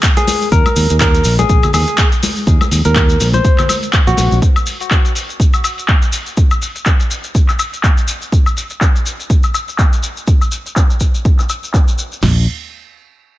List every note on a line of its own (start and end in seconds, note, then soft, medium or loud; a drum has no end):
0.03 kick loud
0.03 clap loud
0.03 closed hi-hat medium
0.03 maracas medium
0.17 0.48 G#4 medium
0.17 closed hi-hat medium
0.17 muted conga medium
0.17 maracas soft
0.27 open hi-hat loud
0.27 high conga medium
0.27 maracas medium
0.41 maracas soft
0.52 0.62 D#2 loud
0.52 0.95 A#4 loud
0.52 kick loud
0.52 closed hi-hat medium
0.52 maracas soft
0.66 high conga medium
0.66 high woodblock medium
0.66 maracas soft
0.76 0.86 D#2 medium
0.76 open hi-hat loud
0.76 maracas medium
0.90 1.20 D#2 medium
0.90 closed hi-hat medium
0.90 maracas soft
1.01 1.34 A#4 loud
1.01 kick loud
1.01 clap loud
1.01 high conga medium
1.01 maracas medium
1.15 closed hi-hat medium
1.15 maracas soft
1.24 1.43 A#1 loud
1.24 open hi-hat loud
1.24 maracas loud
1.39 1.70 G#4 loud
1.39 closed hi-hat soft
1.39 high conga loud
1.39 maracas soft
1.49 1.59 A#1 medium
1.49 kick loud
1.49 closed hi-hat medium
1.49 maracas medium
1.63 closed hi-hat soft
1.63 low conga medium
1.63 high woodblock medium
1.63 maracas soft
1.73 1.84 D#2 medium
1.73 2.07 G#4 medium
1.73 open hi-hat loud
1.73 muted conga medium
1.73 high conga medium
1.73 high woodblock medium
1.73 maracas medium
1.88 closed hi-hat medium
1.88 maracas soft
1.98 kick loud
1.98 clap loud
1.98 closed hi-hat medium
1.98 maracas medium
2.12 closed hi-hat soft
2.12 maracas soft
2.23 open hi-hat loud
2.23 high conga loud
2.23 maracas loud
2.36 maracas soft
2.47 2.57 D#2 loud
2.47 kick loud
2.47 closed hi-hat medium
2.47 maracas medium
2.61 high conga medium
2.61 high woodblock medium
2.61 maracas soft
2.71 2.81 D#2 medium
2.71 open hi-hat loud
2.71 maracas loud
2.85 3.15 D#2 medium
2.85 3.27 A#4 medium
2.85 closed hi-hat medium
2.85 muted conga medium
2.85 maracas soft
2.96 kick loud
2.96 clap loud
2.96 high conga medium
2.96 maracas medium
3.09 closed hi-hat medium
3.09 maracas soft
3.20 3.39 A#1 medium
3.20 open hi-hat loud
3.20 muted conga medium
3.20 maracas medium
3.33 3.76 C5 medium
3.33 closed hi-hat soft
3.33 high conga medium
3.33 maracas soft
3.45 kick loud
3.45 closed hi-hat medium
3.45 maracas medium
3.58 clap soft
3.58 closed hi-hat soft
3.58 low conga medium
3.58 high woodblock medium
3.58 maracas soft
3.69 open hi-hat loud
3.69 high conga medium
3.69 high woodblock medium
3.69 maracas medium
3.83 closed hi-hat soft
3.83 maracas soft
3.93 kick loud
3.93 clap loud
3.93 closed hi-hat medium
3.93 maracas medium
4.07 4.15 A#1 medium
4.07 4.38 F#4 medium
4.07 closed hi-hat soft
4.07 muted conga medium
4.07 maracas soft
4.17 4.28 A#1 medium
4.17 open hi-hat loud
4.17 high conga medium
4.17 maracas loud
4.32 4.39 A#1 loud
4.32 maracas soft
4.42 kick loud
4.42 closed hi-hat medium
4.42 maracas soft
4.56 high woodblock medium
4.56 maracas soft
4.66 open hi-hat loud
4.66 maracas medium
4.80 closed hi-hat medium
4.80 maracas soft
4.91 kick loud
4.91 clap loud
4.91 maracas medium
5.05 closed hi-hat medium
5.05 maracas soft
5.15 open hi-hat loud
5.15 maracas medium
5.29 closed hi-hat soft
5.29 maracas soft
5.40 kick loud
5.40 closed hi-hat medium
5.40 maracas medium
5.54 closed hi-hat soft
5.54 high woodblock medium
5.54 maracas soft
5.64 open hi-hat loud
5.64 high woodblock medium
5.64 maracas loud
5.78 closed hi-hat medium
5.78 maracas soft
5.88 kick loud
5.88 clap loud
5.88 closed hi-hat medium
5.88 maracas medium
6.02 closed hi-hat medium
6.02 maracas soft
6.13 open hi-hat loud
6.13 maracas medium
6.26 maracas soft
6.37 kick loud
6.37 closed hi-hat medium
6.37 maracas medium
6.51 high woodblock medium
6.51 maracas soft
6.62 open hi-hat loud
6.62 maracas medium
6.76 closed hi-hat medium
6.76 maracas soft
6.86 kick loud
6.86 clap loud
6.86 maracas medium
7.00 closed hi-hat medium
7.00 maracas soft
7.10 open hi-hat medium
7.10 maracas medium
7.24 closed hi-hat soft
7.24 maracas soft
7.35 kick loud
7.35 closed hi-hat medium
7.35 maracas medium
7.49 clap soft
7.49 closed hi-hat soft
7.49 high woodblock medium
7.49 maracas soft
7.59 open hi-hat loud
7.59 high woodblock medium
7.59 maracas medium
7.73 closed hi-hat medium
7.73 maracas soft
7.83 kick loud
7.83 clap loud
7.83 maracas medium
7.97 closed hi-hat medium
7.97 maracas soft
8.08 open hi-hat loud
8.08 maracas medium
8.22 maracas soft
8.32 kick loud
8.32 closed hi-hat medium
8.32 maracas soft
8.46 high woodblock medium
8.46 maracas soft
8.57 open hi-hat loud
8.57 maracas medium
8.70 closed hi-hat medium
8.70 maracas soft
8.81 kick loud
8.81 clap loud
8.81 maracas medium
8.95 closed hi-hat medium
8.95 maracas soft
9.06 open hi-hat loud
9.06 maracas medium
9.19 closed hi-hat medium
9.19 maracas soft
9.30 kick loud
9.30 closed hi-hat medium
9.30 maracas soft
9.43 closed hi-hat soft
9.43 high woodblock medium
9.43 maracas soft
9.54 open hi-hat loud
9.54 high woodblock medium
9.54 maracas medium
9.68 closed hi-hat medium
9.68 maracas soft
9.79 kick loud
9.79 clap loud
9.79 maracas medium
9.93 closed hi-hat medium
9.93 maracas soft
10.03 open hi-hat loud
10.03 maracas medium
10.17 maracas soft
10.27 kick loud
10.27 maracas soft
10.41 high woodblock medium
10.41 maracas soft
10.52 open hi-hat loud
10.52 maracas medium
10.66 closed hi-hat medium
10.66 maracas soft
10.76 kick loud
10.76 clap loud
10.76 maracas medium
10.90 closed hi-hat medium
10.90 maracas soft
11.00 kick medium
11.00 open hi-hat loud
11.00 maracas medium
11.15 closed hi-hat medium
11.15 maracas soft
11.25 kick loud
11.25 maracas soft
11.39 clap soft
11.39 closed hi-hat soft
11.39 high woodblock medium
11.39 maracas soft
11.49 open hi-hat loud
11.49 high woodblock medium
11.49 maracas medium
11.63 open hi-hat medium
11.63 maracas soft
11.74 kick loud
11.74 clap loud
11.74 maracas soft
11.88 closed hi-hat medium
11.88 maracas soft
11.98 open hi-hat loud
11.98 maracas medium
12.12 maracas soft
12.23 12.45 A#1 loud
12.23 snare loud
12.23 floor tom loud
12.23 crash medium